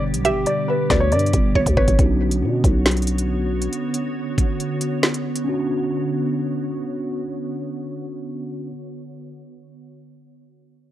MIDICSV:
0, 0, Header, 1, 7, 480
1, 0, Start_track
1, 0, Key_signature, 2, "minor"
1, 0, Tempo, 434783
1, 274, Time_signature, 4, 2, 24, 8
1, 12053, End_track
2, 0, Start_track
2, 0, Title_t, "Synth pluck"
2, 0, Program_c, 0, 84
2, 275, Note_on_c, 0, 76, 103
2, 951, Note_off_c, 0, 76, 0
2, 997, Note_on_c, 0, 74, 81
2, 1672, Note_off_c, 0, 74, 0
2, 1716, Note_on_c, 0, 73, 87
2, 1943, Note_off_c, 0, 73, 0
2, 1956, Note_on_c, 0, 71, 81
2, 2183, Note_off_c, 0, 71, 0
2, 12053, End_track
3, 0, Start_track
3, 0, Title_t, "Grand piano"
3, 0, Program_c, 1, 0
3, 274, Note_on_c, 1, 67, 88
3, 501, Note_off_c, 1, 67, 0
3, 514, Note_on_c, 1, 74, 80
3, 741, Note_off_c, 1, 74, 0
3, 752, Note_on_c, 1, 71, 76
3, 1091, Note_off_c, 1, 71, 0
3, 1107, Note_on_c, 1, 73, 82
3, 1224, Note_off_c, 1, 73, 0
3, 1239, Note_on_c, 1, 74, 85
3, 1913, Note_off_c, 1, 74, 0
3, 1954, Note_on_c, 1, 73, 85
3, 2180, Note_off_c, 1, 73, 0
3, 12053, End_track
4, 0, Start_track
4, 0, Title_t, "Tine electric piano"
4, 0, Program_c, 2, 4
4, 0, Control_c, 2, 64, 127
4, 0, Note_on_c, 2, 47, 70
4, 0, Note_on_c, 2, 55, 60
4, 0, Note_on_c, 2, 62, 63
4, 0, Note_on_c, 2, 67, 78
4, 2136, Note_off_c, 2, 47, 0
4, 2144, Note_off_c, 2, 55, 0
4, 2154, Note_off_c, 2, 62, 0
4, 2162, Note_off_c, 2, 67, 0
4, 2167, Note_on_c, 2, 61, 68
4, 2185, Note_on_c, 2, 59, 61
4, 2203, Note_on_c, 2, 62, 59
4, 2207, Control_c, 2, 64, 0
4, 2221, Note_on_c, 2, 66, 72
4, 2389, Control_c, 2, 64, 127
4, 5976, Note_off_c, 2, 61, 0
4, 5985, Note_off_c, 2, 59, 0
4, 5994, Note_off_c, 2, 62, 0
4, 6003, Note_off_c, 2, 66, 0
4, 6008, Note_on_c, 2, 61, 68
4, 6026, Note_on_c, 2, 59, 57
4, 6044, Note_on_c, 2, 62, 61
4, 6062, Note_on_c, 2, 66, 69
4, 7969, Control_c, 2, 64, 0
4, 9577, Note_off_c, 2, 61, 0
4, 9585, Note_off_c, 2, 59, 0
4, 9595, Note_off_c, 2, 62, 0
4, 9604, Note_off_c, 2, 66, 0
4, 12053, End_track
5, 0, Start_track
5, 0, Title_t, "Ambient pad"
5, 0, Program_c, 3, 92
5, 0, Note_on_c, 3, 50, 78
5, 0, Note_on_c, 3, 55, 72
5, 0, Note_on_c, 3, 59, 72
5, 0, Note_on_c, 3, 67, 93
5, 2149, Note_off_c, 3, 59, 0
5, 2154, Note_off_c, 3, 67, 0
5, 2155, Note_off_c, 3, 50, 0
5, 2155, Note_off_c, 3, 55, 0
5, 2196, Note_on_c, 3, 66, 88
5, 2196, Note_on_c, 3, 73, 73
5, 2197, Note_on_c, 3, 59, 75
5, 2198, Note_on_c, 3, 50, 82
5, 9831, Note_off_c, 3, 50, 0
5, 9831, Note_off_c, 3, 59, 0
5, 9831, Note_off_c, 3, 66, 0
5, 9831, Note_off_c, 3, 73, 0
5, 12053, End_track
6, 0, Start_track
6, 0, Title_t, "808-style bass"
6, 0, Program_c, 4, 38
6, 0, Note_on_c, 4, 31, 105
6, 152, Note_on_c, 4, 35, 102
6, 169, Note_off_c, 4, 31, 0
6, 333, Note_on_c, 4, 31, 101
6, 350, Note_off_c, 4, 35, 0
6, 504, Note_off_c, 4, 31, 0
6, 994, Note_on_c, 4, 38, 104
6, 1234, Note_on_c, 4, 43, 105
6, 1251, Note_off_c, 4, 38, 0
6, 1462, Note_off_c, 4, 43, 0
6, 1474, Note_on_c, 4, 31, 110
6, 1704, Note_off_c, 4, 31, 0
6, 1715, Note_on_c, 4, 31, 100
6, 1830, Note_off_c, 4, 31, 0
6, 1835, Note_on_c, 4, 38, 103
6, 1950, Note_off_c, 4, 38, 0
6, 1955, Note_on_c, 4, 31, 107
6, 2069, Note_off_c, 4, 31, 0
6, 2075, Note_on_c, 4, 31, 103
6, 2190, Note_off_c, 4, 31, 0
6, 2196, Note_on_c, 4, 35, 102
6, 2675, Note_on_c, 4, 47, 103
6, 2691, Note_off_c, 4, 35, 0
6, 2902, Note_off_c, 4, 47, 0
6, 2915, Note_on_c, 4, 35, 104
6, 4070, Note_off_c, 4, 35, 0
6, 12053, End_track
7, 0, Start_track
7, 0, Title_t, "Drums"
7, 153, Note_on_c, 9, 42, 93
7, 263, Note_off_c, 9, 42, 0
7, 274, Note_on_c, 9, 42, 78
7, 385, Note_off_c, 9, 42, 0
7, 510, Note_on_c, 9, 42, 82
7, 620, Note_off_c, 9, 42, 0
7, 994, Note_on_c, 9, 36, 103
7, 994, Note_on_c, 9, 38, 73
7, 998, Note_on_c, 9, 42, 79
7, 1105, Note_off_c, 9, 36, 0
7, 1105, Note_off_c, 9, 38, 0
7, 1109, Note_off_c, 9, 42, 0
7, 1234, Note_on_c, 9, 42, 60
7, 1315, Note_off_c, 9, 42, 0
7, 1315, Note_on_c, 9, 42, 61
7, 1395, Note_off_c, 9, 42, 0
7, 1395, Note_on_c, 9, 42, 61
7, 1472, Note_off_c, 9, 42, 0
7, 1472, Note_on_c, 9, 42, 97
7, 1475, Note_on_c, 9, 36, 101
7, 1583, Note_off_c, 9, 42, 0
7, 1585, Note_off_c, 9, 36, 0
7, 1715, Note_on_c, 9, 36, 61
7, 1825, Note_off_c, 9, 36, 0
7, 1835, Note_on_c, 9, 36, 67
7, 1838, Note_on_c, 9, 42, 90
7, 1945, Note_off_c, 9, 36, 0
7, 1949, Note_off_c, 9, 42, 0
7, 1955, Note_on_c, 9, 36, 101
7, 2065, Note_off_c, 9, 36, 0
7, 2073, Note_on_c, 9, 42, 90
7, 2075, Note_on_c, 9, 36, 101
7, 2183, Note_off_c, 9, 42, 0
7, 2185, Note_off_c, 9, 36, 0
7, 2195, Note_on_c, 9, 36, 118
7, 2195, Note_on_c, 9, 42, 72
7, 2305, Note_off_c, 9, 36, 0
7, 2305, Note_off_c, 9, 42, 0
7, 2554, Note_on_c, 9, 42, 78
7, 2664, Note_off_c, 9, 42, 0
7, 2915, Note_on_c, 9, 36, 106
7, 2919, Note_on_c, 9, 42, 75
7, 3025, Note_off_c, 9, 36, 0
7, 3029, Note_off_c, 9, 42, 0
7, 3154, Note_on_c, 9, 38, 104
7, 3155, Note_on_c, 9, 42, 58
7, 3215, Note_off_c, 9, 42, 0
7, 3215, Note_on_c, 9, 42, 58
7, 3265, Note_off_c, 9, 38, 0
7, 3276, Note_off_c, 9, 42, 0
7, 3276, Note_on_c, 9, 42, 59
7, 3336, Note_off_c, 9, 42, 0
7, 3336, Note_on_c, 9, 42, 59
7, 3390, Note_off_c, 9, 42, 0
7, 3390, Note_on_c, 9, 42, 93
7, 3501, Note_off_c, 9, 42, 0
7, 3515, Note_on_c, 9, 42, 90
7, 3626, Note_off_c, 9, 42, 0
7, 3993, Note_on_c, 9, 42, 86
7, 4103, Note_off_c, 9, 42, 0
7, 4114, Note_on_c, 9, 42, 72
7, 4225, Note_off_c, 9, 42, 0
7, 4350, Note_on_c, 9, 42, 77
7, 4460, Note_off_c, 9, 42, 0
7, 4834, Note_on_c, 9, 36, 100
7, 4838, Note_on_c, 9, 42, 75
7, 4945, Note_off_c, 9, 36, 0
7, 4949, Note_off_c, 9, 42, 0
7, 5078, Note_on_c, 9, 42, 69
7, 5189, Note_off_c, 9, 42, 0
7, 5310, Note_on_c, 9, 42, 89
7, 5420, Note_off_c, 9, 42, 0
7, 5554, Note_on_c, 9, 38, 112
7, 5665, Note_off_c, 9, 38, 0
7, 5677, Note_on_c, 9, 42, 87
7, 5787, Note_off_c, 9, 42, 0
7, 5913, Note_on_c, 9, 42, 85
7, 6023, Note_off_c, 9, 42, 0
7, 12053, End_track
0, 0, End_of_file